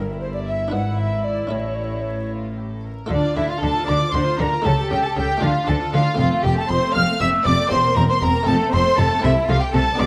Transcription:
Already playing: double bass section G1, harpsichord G2 E4 G4 A#4, cello section G2, viola section E4, flute A#4, violin section A#4
0.20 flute C5, violin section C5
0.34 flute D5, violin section D5
0.47 flute E5, violin section E5
0.68 harpsichord D4 E4 B4, violin section F#5, flute F#5
0.72 double bass section G#1, harpsichord G#2, cello section G#2, violin section B4
0.99 violin section E5, flute E5
1.24 flute D5, violin section D5
1.47 harpsichord C#4 E4 A4
1.51 double bass section A1, harpsichord A2, cello section A2, violin section A4 C#5, flute C#5
1.59 flute D5
1.67 flute C#5
1.75 flute D5
1.85 flute C#5
1.94 flute D5
2.01 flute C#5
2.30 violin section F4
2.57 violin section G4
2.70 violin section A4
2.84 violin section A#4
3.06 double bass section D2, harpsichord A3 F4 A4, violin section D4 D5, flute D5
3.10 cello section D3, harpsichord D3, viola section D4
3.23 viola section F4
3.35 double bass section D2, harpsichord D3, cello section D3, viola section D4, violin section E4 E5, flute E5
3.49 violin section F4 F5, viola section F4, flute F5
3.62 double bass section D2, cello section D3, harpsichord D3, viola section D4, violin section A4 A5, flute A5
3.76 viola section F4
3.87 double bass section D2, harpsichord D3, cello section D3, viola section D4, violin section D5 D6, flute D6
4.01 viola section F4
4.13 double bass section D2, harpsichord D3, cello section D3, viola section D4, violin section C5 C6, flute C6
4.26 viola section F4
4.39 double bass section D2, harpsichord D3, cello section D3, viola section D4, violin section A#4 A#5, flute A#5
4.53 viola section F4
4.62 double bass section C#2, cello section C#3, harpsichord A3 E4 G4, violin section A4 A5, viola section A4, flute A5
4.66 harpsichord C#3
4.78 viola section G4
4.90 double bass section C#2, harpsichord C#3, cello section C#3, violin section G4 G5, viola section A4, flute G5
5.02 viola section G4, violin section A4 A5, flute A5
5.16 double bass section C#2, harpsichord C#3, cello section C#3, violin section G4 G5, viola section A4, flute G5
5.29 viola section G4
5.37 harpsichord A3 D4 F4, violin section F4
5.42 double bass section D2, cello section D3, harpsichord D3, viola section D4, violin section F5, flute F5
5.54 viola section F4
5.67 double bass section D2, cello section D3, harpsichord D3, viola section D4, violin section A4 A5, flute A5
5.81 viola section F4
5.93 double bass section D2, cello section D3, harpsichord D3, viola section D4, violin section F4 F5, flute F5
6.06 viola section F4
6.15 double bass section F1, harpsichord A3 C4 F4
6.19 cello section F2, harpsichord F2, viola section C4, violin section F4 F5, flute F5
6.32 viola section A3
6.44 double bass section F1, cello section F2, harpsichord F2, viola section C4, violin section G4 G5, flute G5
6.57 viola section A3, violin section A4 A5, flute A5
6.68 double bass section F1, cello section F2, harpsichord F2, viola section C4, violin section C5 C6, flute C6
6.83 viola section A3
6.93 double bass section F1, cello section F2, harpsichord F2, viola section C4, violin section F5 F6, flute F6
7.08 viola section A3
7.20 double bass section F1, harpsichord F2, cello section F2, viola section C4, violin section E5 E6, flute E6
7.34 viola section A3
7.45 double bass section F1, harpsichord F2, cello section F2, viola section C4, violin section D5 D6, flute D6
7.59 viola section A3
7.67 double bass section E1, harpsichord A#3 C4 G4, violin section C5 C6
7.71 harpsichord E2, cello section E2, viola section C4, flute C6
7.84 viola section A#3
7.96 double bass section E1, harpsichord E2, cello section E2, viola section C4, violin section A#4 A#5, flute A#5
8.08 viola section A#3, violin section C5 C6, flute C6
8.22 double bass section E1, cello section E2, harpsichord E2, viola section C4, violin section A#4 A#5, flute A#5
8.35 viola section A#3
8.43 harpsichord A3 C4 A4, violin section A5
8.47 double bass section F1, harpsichord F2, cello section F2, viola section C4, violin section A4, flute A5
8.60 viola section A3
8.72 double bass section F1, cello section F2, harpsichord F2, viola section C4, violin section C5 C6, flute C6
8.86 viola section A3
8.97 double bass section F1, harpsichord F2, cello section F2, viola section C4, violin section A4 A5, flute A5
9.11 viola section A3
9.20 harpsichord A3 C4 A4, viola section A3, violin section E4
9.24 double bass section C2, cello section C3, harpsichord C3, violin section E5, flute E5
9.47 double bass section C2, cello section C3, harpsichord C3, viola section A3, violin section F4 F5, flute F5
9.59 violin section G4 G5, flute G5
9.72 double bass section C2, cello section C3, harpsichord C3, viola section A3, violin section A4 A5, flute A5
9.95 double bass section B1, cello section B2, viola section G#3, harpsichord B3 D4 G#4, violin section D5, flute D6
9.99 harpsichord B2, violin section D6

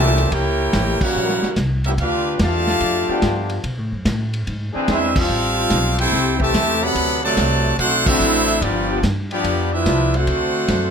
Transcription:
Already playing: upright bass C2, trombone section A#2 E3 A3 C4 G4, trumpet section G4 C5 E5 A5
0.18 ride
0.30 upright bass C#2, trombone section A#3 E4 G4, trumpet section E4 A#4 C#5 G5, kick, ride
0.73 upright bass A1, kick, snare, hi-hat pedal, ride
1.01 trombone section E3 G3 A#3 C#4 F#4, trumpet section E4 A#4 C#5 F#5, muted upright bass stroke, kick, crash
1.15 upright bass A#1
1.29 snare
1.43 muted upright bass stroke, snare
1.56 upright bass C2, kick, snare, hi-hat pedal, ride
1.84 trombone section F3 G3 A#3 B3 D4 E4 G4, trumpet section C#4 G4 A#4 E5, ride
1.98 upright bass D2, trombone section B3 D4 F4, trumpet section D4 G4 B4 F5, kick, ride
2.39 upright bass E2, trombone section D3 A3 F4, trumpet section G4 D5 F5 A5, kick, snare, hi-hat pedal, ride
2.67 snare
2.80 upright bass F2, kick, ride
3.08 trombone section F3 B3 D4 G4, muted upright bass stroke
3.22 upright bass G2, kick, snare, hi-hat pedal, ride
3.49 ride
3.64 upright bass B2, kick, ride
3.78 upright bass A2
3.92 upright bass F#2
4.05 upright bass A2, kick, snare, hi-hat pedal, ride
4.33 ride
4.47 upright bass G#2, kick, ride
4.73 trombone section E3 C4 D4 G#4, muted upright bass stroke
4.88 upright bass E2, trombone section G#3 C4 E4, trumpet section D4 G#4 C5 E5, kick, snare, hi-hat pedal, ride
5.16 trombone section G3 C4 F4, trumpet section C4 G4 A4 F5, kick, crash
5.29 upright bass A1
5.70 upright bass B1, kick, snare, hi-hat pedal, ride
5.98 trombone section C4 E4 G4, trumpet section E4 A4 C5 G5, ride
6.12 upright bass C2, kick, snare
6.39 trombone section C3 E3 A3 C4 G4, trumpet section G4 C5 E5 A5, kick
6.54 upright bass E2, kick, snare, hi-hat pedal, ride
6.82 trombone section C3 F#3 B3, trumpet section A4 D5 F#5 B5
6.95 upright bass D2, kick, ride
7.23 trombone section C3 F#3 A3, trumpet section F#4 C5 D5 A5
7.37 upright bass C2, kick, snare, hi-hat pedal, ride
7.78 upright bass B1, trombone section A3 C4 F#4, trumpet section D4 A4 C5 F#5, kick, ride
8.06 trombone section D3 A3 C4 E4 F#4, trumpet section D4 A4 C5 E5, kick, crash
8.20 upright bass A1, hi-hat pedal
8.48 ride
8.61 upright bass G1, trombone section F3 B3 D4, trumpet section B3 F4 G4 D5, kick, ride
8.90 trombone section F3 B3 D4 G4
9.03 upright bass G2, kick, snare, hi-hat pedal, ride
9.31 trombone section F3 B3 D4 G4, trumpet section B3 F4 G4 D5, ride
9.44 upright bass F2, kick, ride
9.73 trombone section F3 B3 E4, trumpet section D4 G4 B4 E5
9.85 upright bass C2, trombone section F3 B3 D4 F4, kick, snare, hi-hat pedal, ride
10.14 trombone section A3 C4 F#4, trumpet section D4 A4 C5 F#5, ride
10.27 upright bass D2, kick, ride
10.68 upright bass F#2, kick, snare, hi-hat pedal, ride

